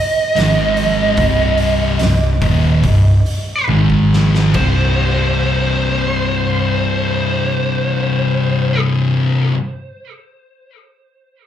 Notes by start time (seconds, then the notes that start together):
Already playing: D#5
0.35 G#1 G#2 D#3 G#3, snare, open hi-hat
0.77 open hi-hat
1.17 C1 C2 G2 C3, kick, open hi-hat
1.58 open hi-hat
1.99 C1 C2 G2, snare, open hi-hat
2.42 D#1 D#2 A#2 D#3, kick, open hi-hat
2.83 C1 C2 G2, kick, open hi-hat
3.26 open hi-hat
3.68 G#1 G#2 D#3 G#3, high tom
3.90 kick
4.13 snare
4.35 snare
4.54 C1 C2 G2 C5, kick, crash
4.59 C3